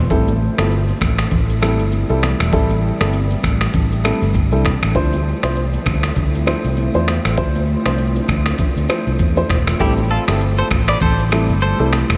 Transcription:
Already playing: A3
0.10 A1 C3 E3 G3 C4 E4 A4, kick, low conga, shaker
0.28 high conga, shaker
0.58 G1 G3 C4 E4 A4, finger snap, cross-stick, high conga, shaker
0.71 shaker
0.88 high conga, shaker
1.01 A1, finger snap, kick, cross-stick, high conga, low conga
1.18 finger snap, cross-stick, shaker
1.31 A1, kick, low conga, shaker
1.50 shaker
1.61 G3 C4 E4 A4, finger snap, cross-stick, high conga, shaker
1.79 G1, shaker
1.92 high conga, shaker
2.09 C2 G3 C4 E4 A4, shaker
2.23 finger snap, cross-stick, high conga
2.40 E1, finger snap, cross-stick, shaker
2.52 A1 G3 C4 D4 E4 A4, kick, low conga, shaker
2.70 high conga, shaker
3.00 G1 G3 C4 E4 A4, finger snap, cross-stick, high conga, shaker
3.13 shaker
3.31 high conga, shaker
3.43 A1, finger snap, kick, cross-stick, high conga, low conga
3.61 finger snap, cross-stick, shaker
3.73 A1, kick, low conga, shaker
3.92 shaker
4.04 G3 C4 E4 A4, finger snap, cross-stick, high conga, shaker
4.22 G1, shaker
4.34 kick, high conga, shaker
4.52 C2 G3 C4 E4 A4, shaker
4.65 finger snap, kick, cross-stick, high conga
4.82 A1, finger snap, cross-stick, shaker
4.95 D2 D3 F3 A3 C4 D4 E4 F4 C5, kick, low conga, shaker
5.12 high conga, shaker
5.43 C2 F3 D4 E4 C5, finger snap, cross-stick, high conga, shaker
5.55 shaker
5.73 high conga, shaker
5.86 D2, finger snap, kick, cross-stick, high conga, low conga
6.03 finger snap, cross-stick, shaker
6.16 D2, kick, low conga, shaker
6.34 shaker
6.46 F3 D4 E4 C5, finger snap, cross-stick, high conga, shaker
6.64 C2, shaker
6.77 high conga, shaker
6.94 E2 F3 D4 E4 C5, shaker
7.08 finger snap, cross-stick, high conga
7.25 A1, finger snap, cross-stick, shaker
7.37 F3 D4 E4 C5, kick, low conga, shaker
7.55 high conga, shaker
7.85 C2 F3 D4 E4 C5, finger snap, cross-stick, high conga, shaker
7.98 shaker
8.15 high conga, shaker
8.28 D2, finger snap, kick, cross-stick, high conga, low conga, shaker
8.46 finger snap, cross-stick, shaker
8.58 kick, low conga, shaker
8.76 D2, shaker
8.89 F3 D4 E4 C5, finger snap, cross-stick, high conga, shaker
9.07 C2, shaker
9.19 E2, kick, high conga, shaker
9.36 F3 D4 E4 C5, shaker
9.49 E1, finger snap, kick, cross-stick, high conga, shaker
9.67 finger snap, cross-stick, shaker
9.80 A1 C3 E3 G3 A3 C4 E4 G4 A4, kick, low conga, shaker
9.97 high conga, shaker
10.11 F4 A4
10.27 G1 G3 C4 E4 A4, finger snap, cross-stick, high conga, shaker
10.40 shaker
10.58 A4 C5, high conga, shaker
10.71 A1, finger snap, kick, cross-stick, high conga, low conga
10.88 B4 D5, finger snap, cross-stick, shaker
11.01 A1 A4 C5, kick, low conga, shaker
11.19 shaker
11.31 G3 C4 E4 A4, finger snap, cross-stick, high conga, shaker
11.49 G1, shaker
11.61 A4 C5, high conga, shaker
11.79 C2 G3 C4 E4 A4, shaker
11.93 finger snap, cross-stick, high conga
12.09 E1, finger snap, cross-stick, shaker

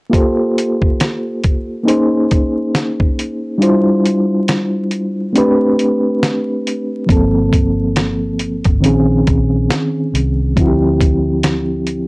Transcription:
0.09 A#3 F4 G4 A4, kick
0.14 C5, closed hi-hat
0.58 closed hi-hat
0.82 kick
1.00 snare, closed hi-hat
1.44 kick, closed hi-hat
1.83 A#3 C#4 D#4 G#4
1.88 C5, closed hi-hat
2.31 kick, closed hi-hat
2.75 snare, closed hi-hat
3.00 kick
3.19 closed hi-hat
3.58 G3 D4 E4 F4
3.62 C5, closed hi-hat
4.06 closed hi-hat
4.48 snare, closed hi-hat
4.91 closed hi-hat
5.33 A3 C4 D4, closed hi-hat
5.37 G4 B4
5.79 closed hi-hat
6.23 snare, closed hi-hat
6.67 closed hi-hat
7.06 G1 F3 A#3 C4, kick, closed hi-hat
7.12 A4
7.53 kick, closed hi-hat
7.96 snare, closed hi-hat
8.39 closed hi-hat
8.64 G1, kick, closed hi-hat
8.80 A#1 D#3 C4 C#4, closed hi-hat
8.86 G#4
9.27 A#1, kick, closed hi-hat
9.70 snare, closed hi-hat
10.14 C2, closed hi-hat
10.56 D2 F3 C4 E4, kick, closed hi-hat
10.61 F#4
10.68 G4
11.01 kick, closed hi-hat
11.43 snare, closed hi-hat
11.87 closed hi-hat

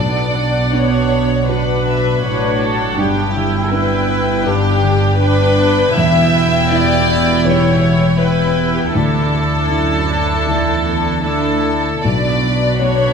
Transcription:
Already playing: B1 B2 B3 D4 D5 F#5
0.34 F#3 D4
0.72 B3 D4 F#4 C#5
1.10 B3 D4
1.48 B2 D4 F#4 B4 F#5
1.86 F#3 E5
2.23 A1 A2 D4 F#4 C#5 F#5
2.60 A4 D5
2.97 G1 G2 B3 D4 G4 G5
3.35 D3 E4
3.72 D4 G4 B4 G5
4.09 D5
4.46 G2 D4 G4 B4
4.83 D3
5.20 B3 D4 G4 B4 G5
5.58 D5
5.96 E1 E2 E3 B3 E4 E5 G5
6.35 B3
6.71 E4 G4 D5
7.08 E5
7.45 E3 G4 B4 C#5
7.82 B3
8.18 B3 E4 G4 B4 G5
8.57 E5
8.78 G4
8.95 D2 D3 D4 E4 A4 A5
9.34 A3
9.70 F#2 E4
10.09 E5
10.47 E2 D3 E4 D5
10.85 A3
11.24 D2 D4 E4 A4 A5
11.64 E5
12.04 B1 B2 D4 F#4 D5 B5
12.43 F#3
12.80 B3 F#4 C#5

